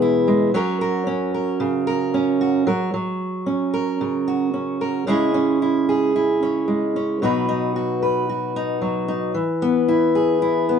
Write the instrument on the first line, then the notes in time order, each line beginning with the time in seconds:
steel-string acoustic guitar
Already playing: B2 E3 G#3 B3 G#4
0.02 E4
0.28 G#3
0.54 F#3 C#4 F#4 A#4
0.81 A#4
1.07 C#4
1.34 A#4
1.60 C#3
1.87 A#4
2.14 C#4
2.41 F#4
2.67 F#3 A#4
2.94 F#3
3.46 C#4
3.74 A#4
4.01 C#3
4.28 F#4
4.54 C#4
4.81 A#4
5.07 C#3 G#3 C#4 E4 G#4
5.34 C#4
5.62 E4
5.89 G#4
6.16 E4
6.43 C#4
6.68 G#3
6.96 C#4
7.22 B2 F#3 D#4 F#4 B4
7.49 D#4
7.76 F#4
8.03 B4
8.29 F#4
8.56 D#4
8.82 F#3
9.08 D#4
9.34 E3
9.62 B3
9.88 E4
10.15 G#4
10.42 E4
10.69 B3